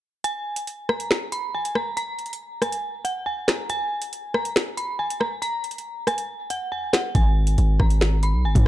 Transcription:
0.24 0.85 G#5 loud
0.24 closed hi-hat medium
0.56 closed hi-hat medium
0.67 closed hi-hat medium
0.89 1.30 A#5 medium
0.89 cross-stick loud
1.00 closed hi-hat medium
1.11 finger snap medium
1.11 snare loud
1.32 1.51 B5 medium
1.32 closed hi-hat medium
1.55 1.73 G#5 medium
1.65 closed hi-hat medium
1.75 1.94 A#5 medium
1.75 cross-stick loud
1.97 2.58 A#5 loud
1.97 closed hi-hat medium
2.19 closed hi-hat soft
2.26 closed hi-hat medium
2.33 closed hi-hat medium
2.62 3.02 G#5 medium
2.62 cross-stick loud
2.62 closed hi-hat medium
2.72 closed hi-hat medium
3.05 3.24 F#5 medium
3.05 closed hi-hat medium
3.26 3.45 G#5 medium
3.48 3.67 A#5 medium
3.48 finger snap loud
3.48 cross-stick loud
3.48 snare loud
3.48 closed hi-hat medium
3.70 4.31 G#5 loud
3.70 closed hi-hat medium
4.02 closed hi-hat medium
4.13 closed hi-hat medium
4.34 4.75 A#5 medium
4.34 cross-stick loud
4.45 closed hi-hat medium
4.56 finger snap medium
4.56 snare loud
4.77 4.96 B5 medium
4.77 closed hi-hat medium
4.99 5.18 G#5 medium
5.10 closed hi-hat medium
5.20 5.39 A#5 medium
5.20 cross-stick loud
5.42 6.03 A#5 loud
5.42 closed hi-hat medium
5.64 closed hi-hat medium
5.71 closed hi-hat medium
5.78 closed hi-hat medium
6.07 6.48 G#5 medium
6.07 cross-stick loud
6.07 closed hi-hat medium
6.18 closed hi-hat medium
6.50 6.69 F#5 medium
6.50 closed hi-hat medium
6.72 6.91 G#5 medium
6.93 7.12 F#5 medium
6.93 finger snap medium
6.93 cross-stick loud
6.93 snare loud
6.93 closed hi-hat medium
7.15 7.56 G#1 loud
7.15 7.76 G#5 loud
7.15 kick loud
7.15 closed hi-hat medium
7.47 closed hi-hat medium
7.58 7.79 G#1 loud
7.58 closed hi-hat medium
7.80 8.35 G#1 loud
7.80 8.20 A#5 medium
7.80 kick loud
7.80 cross-stick loud
7.90 closed hi-hat medium
8.01 finger snap medium
8.01 snare loud
8.23 8.42 B5 medium
8.23 closed hi-hat medium
8.34 8.46 B1 loud
8.44 8.55 G#1 loud
8.44 8.64 G#5 medium
8.55 8.68 G#2 loud
8.55 kick loud
8.55 closed hi-hat medium

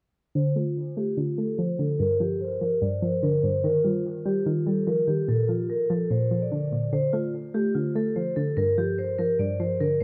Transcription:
0.35 1.16 D3 medium
0.35 0.53 C5 loud
0.55 0.96 A3 medium
0.55 0.74 F4 medium
0.97 1.37 A3 medium
0.97 1.15 G4 medium
1.17 1.78 D3 medium
1.17 1.35 F4 medium
1.38 1.99 A3 medium
1.38 1.56 A4 medium
1.58 1.99 F3 medium
1.58 1.77 C5 medium
1.79 1.99 D3 medium
1.79 1.97 A4 medium
1.99 2.80 G2 medium
1.99 2.17 A#4 loud
2.20 2.60 F3 medium
2.20 2.38 G4 medium
2.41 2.59 C5 medium
2.61 3.01 F3 medium
2.61 2.79 A#4 medium
2.82 3.42 G2 medium
2.82 3.00 D5 medium
3.02 3.64 F3 medium
3.02 3.20 C5 medium
3.23 3.64 D3 loud
3.23 3.41 A#4 medium
3.43 3.64 G2 medium
3.43 3.61 C5 medium
3.64 4.45 D#3 medium
3.64 3.82 A#4 medium
3.84 4.24 G3 medium
3.84 4.02 F4 medium
4.25 4.65 G3 medium
4.25 4.44 G4 medium
4.46 5.06 D#3 medium
4.46 4.64 F4 medium
4.66 5.28 G3 medium
4.66 4.85 A4 medium
4.87 5.28 F3 medium
4.87 5.05 A#4 medium
5.07 5.28 D#3 medium
5.07 5.26 G4 medium
5.28 6.09 A#2 medium
5.28 5.47 A4 loud
5.49 5.89 F3 medium
5.49 5.67 F4 medium
5.70 5.88 A#4 medium
5.90 6.30 F3 medium
5.90 6.08 A4 medium
6.10 6.71 A#2 medium
6.10 6.40 C5 medium
6.31 6.93 F3 medium
6.42 6.90 D5 medium
6.52 6.91 D3 medium
6.72 6.93 A#2 medium
6.93 7.74 D3 medium
6.93 7.11 C5 loud
7.13 7.53 A3 medium
7.13 7.31 F4 medium
7.54 7.94 A3 medium
7.54 7.72 G4 medium
7.75 8.35 D3 medium
7.75 7.93 F4 medium
7.95 8.57 A3 medium
7.95 8.14 A4 medium
8.16 8.57 F3 medium
8.16 8.34 C5 medium
8.36 8.57 D3 medium
8.36 8.54 A4 medium
8.57 9.38 G2 medium
8.57 8.75 A#4 loud
8.78 9.18 F3 medium
8.78 8.96 G4 medium
8.98 9.16 C5 medium
9.19 9.59 F3 medium
9.19 9.37 A#4 medium
9.39 10.00 G2 medium
9.39 9.57 D5 medium
9.60 10.04 F3 medium
9.60 9.78 C5 medium
9.80 10.04 D3 medium
9.80 9.99 A#4 medium
10.00 10.04 C5 medium

